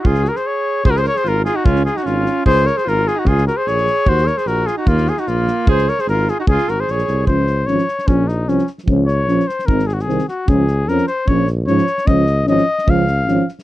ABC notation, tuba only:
X:1
M:2/4
L:1/8
Q:1/4=150
K:Db
V:1 name="Tuba" clef=bass
D,,2 z2 | D,,2 A,,,2 | D,,2 A,,,2 | D,,2 A,,,2 |
D,,2 B,,,2 | E,,2 B,,,2 | E,,2 B,,,2 | D,,2 A,,,2 |
D,, A,,, B,,, C,, | D,,2 A,,, z | B,,,2 C,, z | D,,2 B,,, z |
A,,,2 C,, z | D,,2 F,, z | B,,,2 A,, z | D,,2 A,,, z |
D,,2 A,,, z |]